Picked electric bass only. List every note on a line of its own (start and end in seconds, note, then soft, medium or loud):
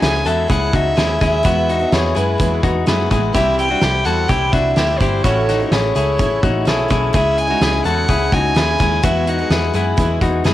0.02 0.22 C#2 medium
0.25 0.45 E2 medium
0.50 0.70 C#2 medium
0.74 0.93 C#2 medium
0.98 1.17 D#2 medium
1.22 1.41 D#2 medium
1.45 1.84 E2 loud
1.93 2.12 E2 loud
2.16 2.36 F#2 medium
2.40 2.60 E2 loud
2.63 2.83 E2 medium
2.88 3.07 F#2 medium
3.11 3.31 A1 medium
3.34 3.74 C2 loud
3.83 4.02 C2 medium
4.06 4.25 E2 medium
4.29 4.49 C2 medium
4.53 4.73 C2 loud
4.77 4.97 D2 medium
5.01 5.20 G1 medium
5.24 5.63 A1 medium
5.71 5.91 A1 medium
5.96 6.19 C#2 medium
6.19 6.39 A1 medium
6.43 6.67 A1 medium
6.67 6.87 B1 medium
6.90 7.10 B1 medium
7.14 7.53 C#2 loud
7.61 7.81 C#2 medium
7.85 8.05 E2 medium
8.09 8.28 C#2 medium
8.32 8.52 C#2 medium
8.55 8.75 D#2 medium
8.80 9.00 D#2 medium
9.04 9.43 E2 medium
9.50 9.70 E2 medium
9.74 9.94 F#2 medium
9.98 10.17 E2 loud
10.21 10.41 E2 medium
10.45 10.54 F#2 medium